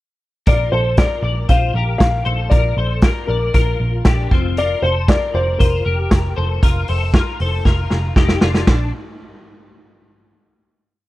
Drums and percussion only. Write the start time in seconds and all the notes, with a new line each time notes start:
0.47 kick, closed hi-hat
0.97 kick, snare, closed hi-hat
1.49 kick, closed hi-hat
2.00 kick, snare, closed hi-hat
2.52 kick, closed hi-hat
3.02 kick, snare, closed hi-hat
3.54 kick, closed hi-hat
4.05 kick, snare, closed hi-hat
4.31 kick
4.57 closed hi-hat
5.08 kick, snare, closed hi-hat
5.60 kick, closed hi-hat
6.11 kick, snare, closed hi-hat
6.63 kick, closed hi-hat
6.88 open hi-hat
7.14 kick, snare, closed hi-hat
7.40 open hi-hat
7.65 kick, snare
7.90 snare
8.16 kick, snare
8.29 snare
8.41 snare
8.54 snare
8.67 kick, snare, ride bell